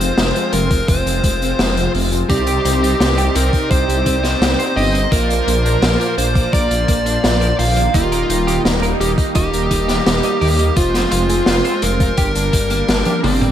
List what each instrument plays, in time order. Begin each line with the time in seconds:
Already playing: detuned saw bass F1, supersaw synth G#3 C4 F4, lead electric guitar C5
0.00 clean electric guitar C4, closed hi-hat
0.18 detuned saw bass F1, clean electric guitar G#3, snare, closed hi-hat
0.36 clean electric guitar F3, closed hi-hat
0.53 detuned saw bass F1, clean electric guitar C3, lead electric guitar A#4, closed hi-hat
0.71 clean electric guitar F3, kick, closed hi-hat
0.88 detuned saw bass F1, clean electric guitar C3, lead electric guitar C5, kick, closed hi-hat
1.06 detuned saw bass F1, clean electric guitar F3, closed hi-hat
1.24 detuned saw bass F1, clean electric guitar G#3, kick, closed hi-hat
1.42 clean electric guitar C4, closed hi-hat
1.59 detuned saw bass F1, clean electric guitar G#3, snare, closed hi-hat
1.77 clean electric guitar F3, closed hi-hat
1.94 detuned saw bass F1, clean electric guitar C3, open hi-hat
2.12 clean electric guitar F3, closed hi-hat
2.30 detuned saw bass C2, analog polysynth C3 C4 D#4 D5, supersaw synth C3 C4 D#4 G4 C5, clean electric guitar C4, lead electric guitar G4, kick, closed hi-hat
2.47 clean electric guitar G4, closed hi-hat
2.65 detuned saw bass C2, clean electric guitar C4, closed hi-hat
2.83 clean electric guitar D#4, closed hi-hat
3.00 detuned saw bass C2, clean electric guitar C4, snare, closed hi-hat
3.18 clean electric guitar G4, closed hi-hat
3.35 detuned saw bass C2, clean electric guitar C4, lead electric guitar A#4, closed hi-hat
3.53 clean electric guitar C4, kick, closed hi-hat
3.71 detuned saw bass C2, lead electric guitar C5, clean electric guitar C5, kick, closed hi-hat
3.88 detuned saw bass C2, clean electric guitar G4, closed hi-hat
4.06 detuned saw bass C2, clean electric guitar C4, kick, closed hi-hat
4.23 clean electric guitar D#4, snare, closed hi-hat
4.41 detuned saw bass C2, clean electric guitar G4, snare, closed hi-hat
4.59 clean electric guitar C5, closed hi-hat
4.76 detuned saw bass G1, analog polysynth C4 D#4 D#5, clean electric guitar G4, lead electric guitar D#5, open hi-hat
4.94 clean electric guitar C4, closed hi-hat
5.12 detuned saw bass A#1, analog polysynth A#2 A#3 F4 D5, supersaw synth F3 A#3, clean electric guitar A#3, lead electric guitar A#4, kick, closed hi-hat
5.29 clean electric guitar F4, closed hi-hat
5.47 detuned saw bass A#1, clean electric guitar A#3, closed hi-hat
5.65 clean electric guitar D4, closed hi-hat
5.82 detuned saw bass A#1, clean electric guitar A#3, snare, closed hi-hat
6.00 clean electric guitar F4, closed hi-hat
6.18 detuned saw bass A#1, clean electric guitar A#3, lead electric guitar C5, closed hi-hat
6.35 clean electric guitar A#3, kick, closed hi-hat
6.53 detuned saw bass A#1, clean electric guitar A#4, lead electric guitar D5, kick, closed hi-hat
6.71 detuned saw bass A#1, clean electric guitar F4, closed hi-hat
6.88 detuned saw bass A#1, clean electric guitar A#3, kick, closed hi-hat
7.06 clean electric guitar D4, closed hi-hat
7.24 detuned saw bass A#1, clean electric guitar F4, snare, closed hi-hat
7.41 clean electric guitar A#4, closed hi-hat
7.59 detuned saw bass A#1, analog polysynth D#3 A#3 F4 D5, clean electric guitar F4, lead electric guitar F5, open hi-hat
7.77 clean electric guitar A#3, closed hi-hat
7.94 detuned saw bass D#1, analog polysynth D#3 A#3 G4 D#5, supersaw synth G3 A#3 D#4, clean electric guitar D#4, lead electric guitar F4, kick, closed hi-hat
8.12 clean electric guitar A#4, closed hi-hat
8.30 detuned saw bass D#1, clean electric guitar D#4, closed hi-hat
8.47 clean electric guitar G4, closed hi-hat
8.65 detuned saw bass D#1, clean electric guitar D#4, snare, closed hi-hat
8.82 clean electric guitar A#4, closed hi-hat
9.00 detuned saw bass D#1, clean electric guitar D#4, lead electric guitar G4, closed hi-hat
9.18 clean electric guitar D#4, kick, closed hi-hat
9.35 detuned saw bass D#1, lead electric guitar G4, clean electric guitar D#5, kick, closed hi-hat
9.53 detuned saw bass D#1, clean electric guitar A#4, closed hi-hat
9.71 detuned saw bass D#1, clean electric guitar D#4, kick, closed hi-hat
9.88 clean electric guitar G4, snare, closed hi-hat
10.06 detuned saw bass D#1, clean electric guitar A#4, snare, closed hi-hat
10.23 clean electric guitar D#5, closed hi-hat
10.41 detuned saw bass D#2, analog polysynth A#3 G4 D#5, clean electric guitar A#4, open hi-hat
10.59 clean electric guitar D#4, closed hi-hat
10.76 detuned saw bass F1, analog polysynth G#3 F4 C5, supersaw synth G#3 C4 F4, clean electric guitar F4, lead electric guitar F4, kick, closed hi-hat
10.94 clean electric guitar C5, snare, closed hi-hat
11.12 detuned saw bass F1, lead electric guitar F4, clean electric guitar F4, closed hi-hat
11.29 clean electric guitar G#4, closed hi-hat
11.46 detuned saw bass F1, clean electric guitar F4, snare, closed hi-hat
11.65 clean electric guitar C5, closed hi-hat
11.82 detuned saw bass F1, clean electric guitar F4, lead electric guitar A#4, closed hi-hat
12.00 clean electric guitar F4, kick, closed hi-hat
12.17 detuned saw bass G1, supersaw synth G3 A#3 D4, clean electric guitar G4, kick, closed hi-hat
12.35 detuned saw bass G1, clean electric guitar D4, closed hi-hat
12.53 detuned saw bass G1, clean electric guitar G3, kick, closed hi-hat
12.70 clean electric guitar A#3, closed hi-hat
12.88 detuned saw bass G1, clean electric guitar D4, snare, closed hi-hat
13.05 clean electric guitar G4, closed hi-hat, high tom
13.24 detuned saw bass G1, analog polysynth A#3 G4 D5, lead electric guitar C4, clean electric guitar D4, open hi-hat, mid tom
13.41 clean electric guitar G3, closed hi-hat, mid tom